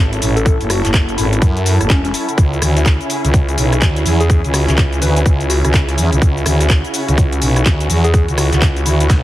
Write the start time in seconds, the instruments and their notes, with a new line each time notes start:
Already playing: fm bass G#1, string section F#3 C#4 E4 A4, ambient pad E4 A4 C#5 F#5
0.13 closed hi-hat, cabasa
0.22 fm bass A1, closed hi-hat, open hi-hat, cabasa
0.36 soft synth lead A4, closed hi-hat, cabasa
0.46 kick, closed hi-hat, cabasa
0.61 fm bass F#1, closed hi-hat, cabasa
0.70 soft synth lead F#4, cross-stick, closed hi-hat, open hi-hat, cabasa
0.85 fm bass F#1, soft synth lead F#4, snare, clap, closed hi-hat, cabasa
0.94 kick, snare, clap, closed hi-hat, cabasa
1.09 closed hi-hat, cabasa
1.18 fm bass G#1, soft synth lead E4, snare, closed hi-hat, open hi-hat, cabasa
1.33 soft synth lead E4, closed hi-hat, cabasa
1.42 fm bass F#2, kick, closed hi-hat, cabasa
1.57 closed hi-hat, cabasa
1.66 open hi-hat, cabasa
1.81 fm bass F#1, cross-stick, closed hi-hat, cabasa
1.90 fm bass E1, soft synth lead C#4, kick, snare, clap, closed hi-hat, cabasa
2.05 soft synth lead C#4, snare, closed hi-hat, cabasa
2.14 closed hi-hat, open hi-hat, cabasa
2.29 closed hi-hat, cabasa
2.38 fm bass C#2, string section C#3 G#4, kick, closed hi-hat, cabasa
2.42 ambient pad G#4
2.53 cabasa
2.62 fm bass D2, cross-stick, closed hi-hat, open hi-hat, cabasa
2.77 snare, closed hi-hat, cabasa
2.86 kick, snare, clap, closed hi-hat, cabasa
3.01 ambient pad G#5, closed hi-hat, cabasa
3.10 closed hi-hat, open hi-hat, cabasa
3.24 fm bass C#2, snare, closed hi-hat, cabasa
3.34 kick, closed hi-hat, cabasa
3.49 closed hi-hat, cabasa
3.58 fm bass B1, closed hi-hat, open hi-hat, cabasa
3.73 cross-stick, closed hi-hat, cabasa
3.82 fm bass D2, kick, snare, clap, closed hi-hat, cabasa
3.96 closed hi-hat, cabasa
4.06 fm bass E2, closed hi-hat, open hi-hat, cabasa
4.20 soft synth lead G#4, closed hi-hat, cabasa
4.30 soft synth lead G#4, kick, closed hi-hat, cabasa
4.44 fm bass C#2, closed hi-hat, cabasa
4.54 soft synth lead F#4, cross-stick, closed hi-hat, open hi-hat, cabasa
4.68 fm bass C#2, soft synth lead F#4, snare, clap, closed hi-hat, cabasa
4.78 kick, snare, clap, closed hi-hat, cabasa
4.93 closed hi-hat, cabasa
5.02 fm bass D2, soft synth lead B4, snare, closed hi-hat, open hi-hat, cabasa
5.16 closed hi-hat, cabasa
5.26 fm bass C#2, kick, closed hi-hat, cabasa
5.41 closed hi-hat, cabasa
5.50 soft synth lead F#4, closed hi-hat, open hi-hat, cabasa
5.64 fm bass C#2, soft synth lead F#4, cross-stick, closed hi-hat, cabasa
5.74 kick, snare, clap, closed hi-hat, cabasa
5.88 snare, closed hi-hat, cabasa
5.98 fm bass E2, closed hi-hat, open hi-hat, cabasa
6.12 fm bass C#2, closed hi-hat, cabasa
6.22 fm bass C#2, string section F#4, kick, closed hi-hat, cabasa
6.37 cabasa
6.46 fm bass D2, cross-stick, closed hi-hat, open hi-hat, cabasa
6.61 snare, closed hi-hat, cabasa
6.70 kick, snare, clap, closed hi-hat, cabasa
6.85 closed hi-hat, cabasa
6.94 closed hi-hat, open hi-hat, cabasa
7.08 fm bass C#2, snare, closed hi-hat, cabasa
7.18 kick, closed hi-hat, cabasa
7.32 closed hi-hat, cabasa
7.42 fm bass B1, closed hi-hat, open hi-hat, cabasa
7.56 cross-stick, closed hi-hat, cabasa
7.66 fm bass D2, kick, snare, clap, closed hi-hat, cabasa
7.80 closed hi-hat, cabasa
7.90 fm bass E2, closed hi-hat, open hi-hat, cabasa
8.04 soft synth lead G#4, closed hi-hat, cabasa
8.14 kick, closed hi-hat, cabasa
8.28 fm bass C#2, closed hi-hat, cabasa
8.38 soft synth lead F#4, cross-stick, closed hi-hat, open hi-hat, cabasa
8.52 fm bass C#2, soft synth lead F#4, snare, clap, closed hi-hat, cabasa
8.62 kick, snare, clap, closed hi-hat, cabasa
8.76 closed hi-hat, cabasa
8.86 fm bass D2, soft synth lead E4, snare, closed hi-hat, open hi-hat, cabasa
9.00 soft synth lead E4, closed hi-hat, cabasa
9.10 fm bass B1, kick, snare, closed hi-hat, cabasa